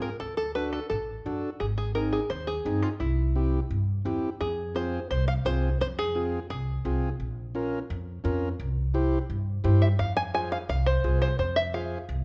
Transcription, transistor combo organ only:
0.00 0.10 G#4 medium
0.55 0.80 D4 medium
0.55 0.80 F#4 medium
0.55 0.80 A4 medium
1.26 1.50 D4 medium
1.26 1.50 F#4 medium
1.26 1.50 A4 medium
1.95 2.20 C4 medium
1.95 2.20 D#4 medium
1.95 2.20 G#4 medium
2.65 2.90 C4 medium
2.65 2.90 D#4 medium
2.65 2.90 G#4 medium
3.35 3.60 C4 medium
3.35 3.60 E4 medium
3.35 3.60 G4 medium
4.05 4.30 C4 medium
4.05 4.30 E4 medium
4.05 4.30 G4 medium
4.75 5.00 C4 medium
4.75 5.00 F4 medium
4.75 5.00 G#4 medium
5.45 5.70 C4 medium
5.45 5.70 F4 medium
5.45 5.70 G#4 medium
6.15 6.40 C4 medium
6.15 6.40 F4 medium
6.15 6.40 G#4 medium
6.85 7.09 C4 medium
6.85 7.10 F4 medium
6.85 7.10 G#4 medium
7.55 7.79 C#4 medium
7.55 7.79 F4 medium
7.55 7.80 A#4 loud
8.24 8.49 C#4 medium
8.24 8.49 F4 medium
8.24 8.49 A#4 loud
8.94 9.19 E4 medium
8.94 9.19 G4 medium
8.94 9.19 C5 loud
9.64 9.89 E4 medium
9.64 9.89 G4 medium
9.64 9.89 C5 loud
10.34 10.58 F4 medium
10.34 10.59 G#4 medium
10.34 10.59 C5 medium
11.04 11.28 F4 medium
11.04 11.29 G#4 medium
11.04 11.29 C5 medium
11.74 11.98 F4 medium
11.74 11.99 G#4 medium
11.74 11.99 C5 medium

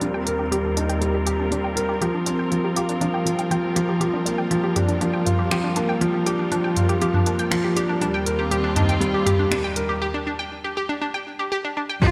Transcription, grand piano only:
0.01 0.25 G3 medium
0.27 0.41 A#4 medium
0.51 0.75 G3 medium
0.77 1.00 D#4 medium
1.01 1.25 G3 medium
1.26 1.50 G4 medium
1.51 1.75 G3 medium
1.76 1.90 A#4 medium
2.01 2.25 F3 medium
2.26 2.50 C4 medium
2.51 2.75 F3 medium
2.76 3.00 F4 medium
3.01 3.24 F3 medium
3.26 3.49 F3 medium
3.51 3.74 F3 medium
3.76 3.99 F3 loud
4.00 4.25 F3 medium
4.26 4.50 A#3 medium
4.51 4.75 F3 medium
4.76 5.00 D4 medium
5.01 5.25 F3 medium
5.26 5.41 F4 medium
5.51 5.75 F3 medium
5.77 6.00 A#3 medium
6.01 6.25 F3 loud
6.27 6.50 D4 medium
6.52 6.75 F3 medium
6.77 6.91 F4 medium
7.02 7.25 F3 medium
7.27 7.50 A#3 medium
7.51 7.75 F3 loud
7.76 8.00 D4 medium
8.01 8.25 G3 medium
8.26 8.41 A#4 medium
8.51 8.75 G3 medium
8.76 9.00 D#4 medium
9.00 9.25 G3 loud
9.26 9.50 G4 medium
9.51 9.75 G3 medium
9.76 9.91 A#4 medium
12.02 12.11 F3 medium

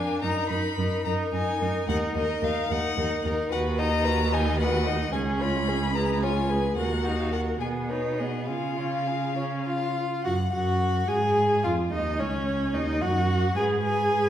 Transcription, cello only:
0.22 0.30 F#2 soft
0.50 0.58 F#2 soft
0.78 0.86 F#2 medium
1.06 1.14 F#2 soft
1.33 1.41 F#2 soft
1.61 1.69 F#2 soft
1.88 1.96 D#2 medium
2.16 2.24 D#2 soft
2.43 2.51 D#2 medium
2.71 2.79 D#2 soft
2.97 3.05 D#2 medium
3.25 3.33 D#2 soft
3.52 5.09 D#2 medium
5.13 6.74 C#2 medium
6.77 7.59 D#2 soft
7.61 8.50 B2 soft
8.49 10.05 C#3 soft
10.25 10.51 F#2 soft
10.53 11.08 F#2 soft
11.09 11.66 G#2 soft
11.64 11.92 F2 soft
11.93 12.21 D#2 soft
12.20 12.75 C#2 soft
12.73 13.03 D#2 soft
13.01 13.56 F#2 soft
13.57 14.28 G#2 soft

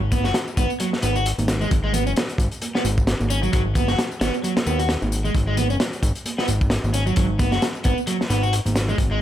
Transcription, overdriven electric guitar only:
0.12 0.24 B3 medium
0.25 0.34 F#4 medium
0.57 0.70 B3 loud
0.80 0.89 F#3 medium
1.03 1.14 B3 medium
1.16 1.25 F#4 medium
1.61 1.68 G#3 loud
1.84 1.91 G#3 loud
1.93 2.03 B3 loud
2.07 2.11 C#4 medium
2.75 2.82 B3 loud
3.30 3.39 C#4 loud
3.43 3.51 F#3 medium
3.53 3.62 F#3 medium
3.76 3.87 B3 medium
3.88 3.98 F#4 medium
4.21 4.33 B3 loud
4.44 4.53 F#3 medium
4.66 4.78 B3 medium
4.79 4.89 F#4 medium
5.25 5.32 G#3 medium
5.47 5.54 G#3 loud
5.57 5.66 B3 loud
5.70 5.74 C#4 medium
6.38 6.45 B3 loud
6.94 7.03 C#4 loud
7.06 7.16 F#3 loud
7.17 7.26 F#3 medium
7.39 7.51 B3 medium
7.52 7.61 F#4 medium
7.84 7.97 B3 loud
8.07 8.16 F#3 medium
8.30 8.42 B3 medium
8.43 8.52 F#4 medium
8.89 8.96 G#3 loud
9.11 9.18 G#3 loud

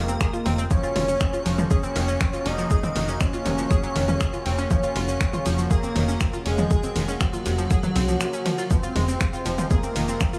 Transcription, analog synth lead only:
0.00 0.61 A#3 loud
0.71 1.61 C#4 loud
1.71 2.47 C#4 loud
2.46 3.22 D#4 loud
3.21 4.61 C#4 loud
4.71 5.61 C#4 loud
5.71 6.36 A#3 loud
6.46 7.11 G#3 loud
7.21 8.72 F#3 loud
8.71 9.72 C4 loud
9.71 10.39 A#3 loud

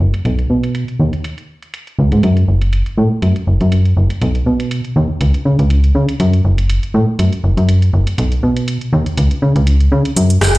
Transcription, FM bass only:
0.00 0.12 F#1 medium
0.25 0.46 B1 loud
0.50 0.85 B2 medium
0.99 1.11 D#2 loud
1.99 2.10 C#2 loud
2.12 2.22 G#2 medium
2.23 2.44 F#2 loud
2.48 2.83 F#1 medium
2.98 3.09 A2 loud
3.22 3.34 F#2 medium
3.47 3.59 F#1 medium
3.61 3.94 F#2 medium
3.97 4.08 F#1 medium
4.22 4.43 B1 loud
4.46 4.81 B2 medium
4.96 5.07 D#2 loud
5.21 5.32 C#2 medium
5.45 5.57 C#3 medium
5.59 5.92 C#2 medium
5.95 6.06 C#3 medium
6.20 6.41 F#2 medium
6.45 6.80 F#1 medium
6.94 7.06 A2 loud
7.19 7.30 F#2 medium
7.44 7.55 F#1 medium
7.57 7.91 F#2 medium
7.93 8.05 F#1 medium
8.18 8.39 B1 medium
8.43 8.78 B2 medium
8.93 9.04 D#2 loud
9.18 9.29 C#2 medium
9.42 9.54 C#3 medium
9.56 9.89 C#2 medium
9.92 10.03 C#3 medium
10.16 10.38 F#2 loud
10.41 10.58 F#1 medium

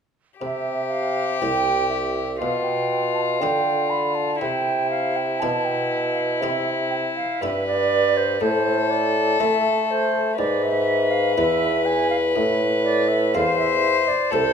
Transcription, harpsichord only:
0.42 1.38 C3 soft
1.42 2.37 C2 soft
1.42 2.13 C4 soft
1.42 2.14 G4 soft
2.42 3.38 B2 medium
3.42 4.38 D3 medium
3.42 4.14 D4 soft
3.42 4.14 F4 soft
3.42 4.14 G4 soft
4.41 5.38 C3 medium
5.42 6.38 B2 medium
5.42 6.14 C4 soft
5.42 6.14 E4 soft
5.42 6.14 G4 soft
6.42 7.10 C3 medium
6.42 7.14 C4 soft
6.42 7.15 E4 soft
6.42 7.15 G4 medium
7.43 8.37 G2 medium
7.43 8.14 C4 soft
7.43 8.14 E4 soft
7.43 8.14 G4 medium
8.41 9.35 A2 medium
9.40 10.34 A3 medium
9.40 10.11 C4 soft
9.40 10.11 E4 soft
9.40 10.11 A4 medium
10.39 11.33 G#2 medium
11.37 12.32 E2 medium
11.37 12.09 D4 medium
11.37 12.09 E4 medium
11.37 12.09 B4 medium
12.36 13.30 A2 medium
13.34 14.01 E2 medium
13.34 14.05 C4 medium
13.34 14.05 E4 medium
13.34 14.06 A4 medium
14.32 14.53 C2 medium
14.32 14.53 C4 medium
14.32 14.53 E4 medium
14.32 14.53 A4 medium

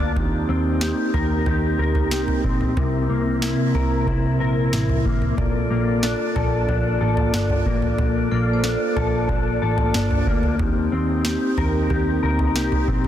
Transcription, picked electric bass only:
0.00 0.12 D2 medium
0.16 0.45 D#2 medium
0.49 0.92 D#2 medium
1.14 1.43 D#2 medium
1.47 1.75 D#2 medium
1.79 2.11 D2 medium
2.11 2.40 C2 medium
2.44 2.73 A#1 medium
2.77 3.06 C2 loud
3.10 3.53 C2 medium
3.75 4.03 C2 medium
4.07 4.40 C2 medium
4.40 4.69 A#1 medium
4.73 5.01 A1 medium
5.05 5.34 A1 medium
5.38 5.67 A#1 medium
5.70 6.13 A#1 medium
6.36 6.65 A#1 medium
6.68 6.97 A#1 medium
7.01 7.30 A1 medium
7.34 7.62 G1 medium
7.66 7.95 A1 medium
7.99 8.27 A#1 medium
8.32 8.75 A#1 medium
8.96 9.25 A#1 medium
9.29 9.58 A#1 medium
9.62 9.91 A1 medium
9.95 10.23 G1 medium
10.27 10.56 D2 medium
10.60 10.88 D#2 medium
10.93 11.35 D#2 medium
11.58 11.86 D#2 medium
11.90 12.19 D#2 medium
12.23 12.56 D2 medium
12.56 12.84 C2 medium
12.88 13.08 A#1 medium

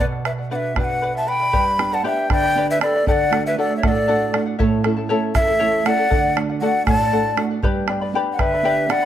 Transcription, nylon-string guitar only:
0.00 1.50 B2 medium
0.51 0.75 B3 soft
0.51 0.76 D4 soft
0.51 0.76 F#4 medium
0.76 1.26 B3 soft
0.76 1.27 D4 soft
0.76 1.27 F#4 medium
1.54 2.03 G2 medium
1.78 2.03 B3 medium
1.78 2.03 D4 soft
1.78 2.04 G4 medium
2.04 2.45 B3 medium
2.04 2.45 D4 soft
2.04 2.46 G4 medium
2.30 2.80 D3 medium
2.55 2.79 B3 medium
2.55 2.79 D4 soft
2.55 2.80 G4 medium
2.80 3.01 B3 soft
2.80 3.01 D4 soft
2.80 3.01 G4 medium
3.06 3.56 D3 medium
3.30 3.56 A3 medium
3.30 3.56 D4 soft
3.30 3.56 F#4 medium
3.57 3.98 A3 soft
3.57 3.98 D4 soft
3.57 3.98 F#4 medium
3.83 4.33 A2 medium
4.09 4.33 A3 medium
4.09 4.34 D4 soft
4.09 4.34 F#4 medium
4.34 4.55 A3 soft
4.34 4.55 D4 soft
4.34 4.55 F#4 medium
4.60 5.09 A2 medium
4.86 5.08 A3 medium
4.86 5.09 C#4 medium
4.86 5.10 E4 medium
5.10 5.51 A3 soft
5.10 5.51 C#4 soft
5.10 5.51 E4 medium
5.36 5.85 E2 medium
5.60 5.84 A3 medium
5.60 5.85 C#4 soft
5.60 5.85 E4 medium
5.85 6.06 A3 soft
5.85 6.06 C#4 soft
5.85 6.06 E4 medium
6.12 6.61 D3 medium
6.36 6.60 A3 medium
6.36 6.61 D4 medium
6.36 6.61 F#4 medium
6.62 7.02 A3 medium
6.62 7.02 D4 soft
6.62 7.03 F#4 medium
6.86 7.36 A2 medium
7.12 7.36 A3 medium
7.12 7.36 D4 soft
7.12 7.37 F#4 medium
7.37 7.58 A3 soft
7.37 7.58 D4 soft
7.37 7.58 F#4 medium
7.62 8.12 G2 medium
7.87 8.12 B3 medium
7.87 8.12 D4 soft
7.87 8.13 G4 medium
8.13 8.54 B3 medium
8.13 8.54 D4 soft
8.13 8.54 G4 medium
8.39 8.88 D3 medium
8.63 8.87 B3 medium
8.63 8.87 D4 soft
8.63 8.88 G4 medium
8.88 9.05 B3 medium
8.88 9.05 D4 soft
8.88 9.05 G4 medium

